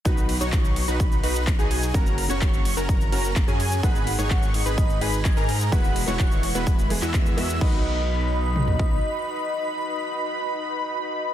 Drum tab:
CC |----------------|----------------|----------------|----------------|
RD |--x---x---x---x-|--x---x---x---x-|--x---x---x---x-|--x---x---x---x-|
HH |xxoxxxo-xxoxxxox|xxo-xxoxxxoxxxox|xxoxxxoxxxo-xxox|xxoxxxo-xxoxxxo-|
SH |xx-xxx-xxx-xxx-x|xx-xxx-xxx-xxx-x|xx-xxx-xxx-xxx-x|xx-xxx-xxx-xxx-x|
CP |----x-------x---|----x-------x---|----x-------x---|----x------xx---|
T2 |----------------|----------------|----------------|----------------|
FT |----------------|----------------|----------------|----------------|
BD |o---o---o---o---|o---o---o---o---|o---o---o---o---|o---o---o---o---|

CC |x---------------|----------------|
RD |----------------|----------------|
HH |----------------|----------------|
SH |----------------|----------------|
CP |----------------|----------------|
T2 |--------o-------|----------------|
FT |---------o------|----------------|
BD |o---------o-----|----------------|